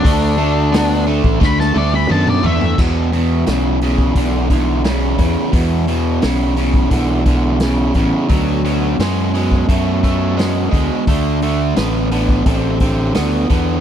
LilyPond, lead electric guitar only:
\new Staff \with { instrumentName = "Lead electric guitar" } { \time 4/4 \key d \major \tempo 4 = 87 d'4. r8 b''16 a''16 d''16 b''16 a''16 d''16 e''8 | r1 | r1 | r1 |
r1 | }